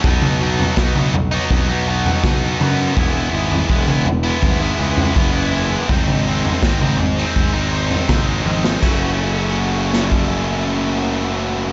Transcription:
<<
  \new Staff \with { instrumentName = "Distorted electric guitar" } { \time 4/4 \key fis \dorian \tempo 4 = 82 <b, fis b dis'>8 <b, fis b dis'>8 <b, fis b dis'>16 <fis b dis'>8 <fis b dis'>8 <fis b dis'>16 <b, fis b dis'>8 <b, fis b dis'>16 <fis b dis'>16 <b, fis b dis'>8 | <e gis b e'>8 <e gis b e'>8 <e gis b e'>16 <gis b e'>8 <gis b e'>8 <gis b e'>16 <e gis b e'>8 <e gis b e'>16 <gis b e'>16 <e gis b e'>8 | <gis, dis gis bis dis'>8 <dis gis bis dis'>8 <gis, dis gis bis dis'>16 <gis bis dis'>8 <gis bis dis'>8 <gis bis dis'>16 <dis gis bis dis'>8 <gis, dis gis bis dis'>16 <gis bis dis'>16 <dis gis bis dis'>8 | <fis, cis fis a cis' fis'>1 | }
  \new Staff \with { instrumentName = "Fingered electric bass" } { \clef bass \time 4/4 \key fis \dorian b,,4 b,,4 b,,4 b,,8 fis,8 | e,,8 gis,,8 e,,4 gis,,8 cis,8 fis,,4 | gis,,4 gis,,4 gis,,4 gis,,8 gis,,8 | fis,,1 | }
  \new DrumStaff \with { instrumentName = "Drums" } \drummode { \time 4/4 <bd tomfh>16 toml8 tomfh16 <bd sn>16 toml16 tomfh8 <bd tomfh>8. tomfh16 <bd sn toml>8 toml8 | <bd tomfh>8. tomfh16 bd16 toml16 tomfh8 <bd tomfh>8. tomfh16 bd4 | <bd tomfh>16 toml8 tomfh16 <bd sn>16 toml16 tomfh8 <bd tomfh>8. tomfh16 <bd sn toml>8 tommh16 sn16 | <cymc bd>4 r8 sn16 bd16 r4 r4 | }
>>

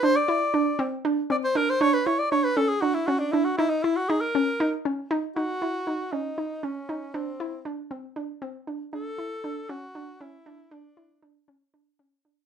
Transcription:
<<
  \new Staff \with { instrumentName = "Tenor saxophone" } { \time 7/8 \key cis \dorian \tempo 4 = 118 c''16 d''4. r8. d''16 c''16 bes'16 c''16 | cis''16 b'16 cis''16 d''16 cis''16 b'16 a'16 gis'16 fis'16 e'16 fis'16 d'16 e'16 fis'16 | e'16 dis'16 e'16 fis'16 gis'16 ais'4 r4 r16 | fis'4. dis'4 cis'4 |
c'4 r2 r8 | a'4. fis'4 e'4 | d'4 r2 r8 | }
  \new Staff \with { instrumentName = "Synth arpeggio sound" } { \time 7/8 \key cis \dorian d'8 e'8 d'8 c'8 d'8 c'8 d'8 | d'8 e'8 d'8 cis'8 d'8 cis'8 d'8 | dis'8 e'8 dis'8 cis'8 dis'8 cis'8 dis'8 | dis'8 e'8 dis'8 cis'8 dis'8 cis'8 dis'8 |
d'8 e'8 d'8 c'8 d'8 c'8 d'8 | d'8 e'8 d'8 cis'8 d'8 cis'8 d'8 | d'8 e'8 d'8 cis'8 d'8 cis'8 d'8 | }
>>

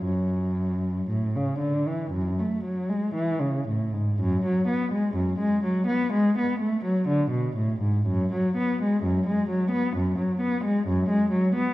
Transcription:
\new Staff \with { instrumentName = "Cello" } { \clef bass \time 4/4 \key fis \minor \tempo 4 = 62 fis,4 a,16 cis16 d16 e16 fis,16 a16 fis16 gis16 e16 cis16 a,16 gis,16 | fis,16 fis16 b16 gis16 fis,16 gis16 fis16 b16 gis16 b16 a16 fis16 d16 b,16 a,16 gis,16 | fis,16 fis16 b16 gis16 fis,16 gis16 fis16 b16 fis,16 fis16 b16 gis16 fis,16 gis16 fis16 b16 | }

